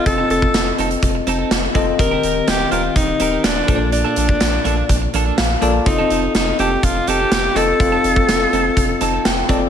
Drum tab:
HH |x-x-x-xxx-x-x-x-|x-x-x-x-x-x-x-x-|x-x-x-x-x-x-x-x-|x-x-x-x-x-x-x-x-|
SD |----o-------o---|----o-------o---|----o-------o---|----o-------o---|
BD |o--o----o-----o-|o-------o-----o-|---o----o-------|o-------o-------|

HH |x-x-x-x-x-x-x-x-|
SD |----o-------o---|
BD |o--o----o-----o-|